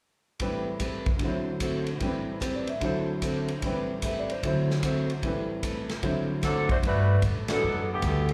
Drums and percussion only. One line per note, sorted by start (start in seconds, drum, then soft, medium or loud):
0.40 kick soft
0.40 ride soft
0.80 kick soft
0.80 hi-hat pedal soft
0.80 ride soft
1.06 kick soft
1.06 ride soft
1.19 kick soft
1.19 ride soft
1.60 kick soft
1.60 hi-hat pedal soft
1.60 ride medium
1.87 ride soft
2.00 kick soft
2.00 ride soft
2.41 kick soft
2.41 hi-hat pedal medium
2.41 ride medium
2.67 ride soft
2.81 kick soft
2.81 ride soft
3.22 kick soft
3.22 hi-hat pedal soft
3.22 ride medium
3.48 ride soft
3.62 kick soft
3.62 ride medium
4.02 kick soft
4.02 hi-hat pedal medium
4.02 ride medium
4.29 ride soft
4.43 kick soft
4.43 ride soft
4.71 snare soft
4.83 kick soft
4.83 hi-hat pedal soft
4.83 ride medium
5.10 ride soft
5.23 kick soft
5.23 ride soft
5.63 kick soft
5.63 hi-hat pedal soft
5.63 ride medium
5.89 snare soft
5.89 ride soft
6.03 kick soft
6.03 ride soft
6.43 kick soft
6.43 snare soft
6.43 hi-hat pedal soft
6.43 ride medium
6.69 kick soft
6.69 ride soft
6.83 kick soft
6.83 ride soft
7.22 kick soft
7.22 hi-hat pedal medium
7.22 ride medium
7.48 snare medium
7.48 ride medium
8.02 kick soft
8.02 hi-hat pedal soft
8.02 ride medium
8.29 ride soft